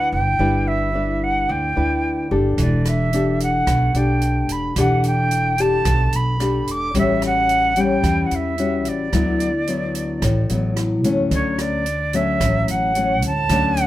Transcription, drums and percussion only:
2.58 kick, closed hi-hat
2.85 cross-stick, closed hi-hat
3.13 closed hi-hat
3.40 closed hi-hat
3.67 kick, cross-stick, closed hi-hat
3.94 closed hi-hat
4.21 closed hi-hat
4.49 closed hi-hat
4.76 kick, cross-stick, closed hi-hat
5.04 closed hi-hat
5.31 closed hi-hat
5.58 closed hi-hat
5.85 kick, cross-stick, closed hi-hat
6.13 closed hi-hat
6.40 cross-stick, closed hi-hat
6.67 closed hi-hat
6.95 kick, closed hi-hat
7.22 cross-stick, closed hi-hat
7.49 closed hi-hat
7.76 closed hi-hat
8.04 kick, cross-stick, closed hi-hat
8.31 closed hi-hat
8.58 closed hi-hat
8.85 closed hi-hat
9.13 kick, cross-stick, closed hi-hat
9.40 closed hi-hat
9.67 closed hi-hat
9.95 closed hi-hat
10.22 kick, cross-stick, closed hi-hat
10.49 closed hi-hat
10.77 cross-stick, closed hi-hat
11.04 closed hi-hat
11.31 kick, closed hi-hat
11.58 cross-stick, closed hi-hat
11.86 closed hi-hat
12.13 closed hi-hat
12.41 kick, cross-stick, closed hi-hat
12.68 closed hi-hat
12.95 closed hi-hat
13.22 closed hi-hat
13.49 kick, cross-stick, closed hi-hat
13.77 closed hi-hat

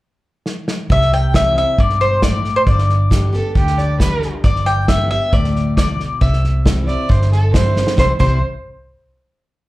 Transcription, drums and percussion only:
0.46 snare
0.68 snare
0.90 kick, snare
1.01 snare
1.12 snare
1.34 kick, snare, hi-hat pedal
1.57 snare
1.79 kick, snare
1.89 snare
2.01 snare
2.22 kick, snare, hi-hat pedal
2.44 snare
2.67 kick, snare
2.78 snare
2.89 snare
3.11 kick, snare, hi-hat pedal
3.34 snare
3.55 kick, snare
3.67 snare
3.78 snare
4.00 kick, snare, hi-hat pedal
4.22 snare
4.44 kick, snare
4.55 snare
4.66 snare
4.88 kick, snare, hi-hat pedal
5.11 snare
5.33 kick, snare
5.44 snare
5.56 snare
5.77 kick, snare, hi-hat pedal
6.00 snare
6.21 kick, snare
6.33 snare
6.44 snare
6.66 kick, snare, hi-hat pedal
6.88 snare
7.10 kick, snare
7.21 snare
7.32 snare
7.54 kick, snare, hi-hat pedal
7.76 snare
7.87 snare
7.98 kick, snare
8.20 kick, crash

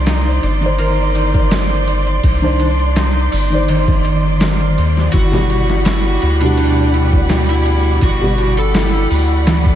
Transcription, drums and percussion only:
0.06 snare, ride
0.43 ride
0.62 ride
0.79 ride
1.15 ride
1.34 kick
1.51 snare, ride
1.88 ride
2.07 ride
2.24 kick, ride
2.60 ride
2.79 ride
2.96 snare, ride
3.32 open hi-hat
3.68 ride
3.88 kick
4.05 ride
4.41 snare, ride
4.61 ride
4.78 ride
4.97 snare
5.13 kick, ride
5.33 snare
5.50 ride
5.70 snare
5.86 snare, ride
6.22 ride
6.41 ride
6.57 ride
6.94 ride
7.13 kick
7.29 snare, ride
7.66 ride
7.85 ride
8.01 kick, ride
8.38 ride
8.57 ride
8.74 snare, ride
9.11 open hi-hat
9.47 snare, ride
9.66 kick

